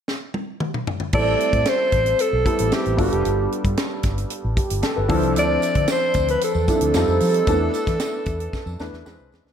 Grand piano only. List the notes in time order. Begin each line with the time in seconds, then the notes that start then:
1.13 G3 A3 C4 E4 A4
2.45 G3 B3 C4 E4 A4
2.97 G3 B3 D4 F4 A4
4.56 G4
4.82 A4
4.96 B4
5.08 F3 C4 D4 E4 A4
6.68 F3 C4 D4 E4 A4
6.95 G3 C4 D#4 F4 A4
7.47 A3 B3 D4 E4 A4
8.79 A3 B3 D4 E4 B4
9.05 G#3 C4 D4 E4 B4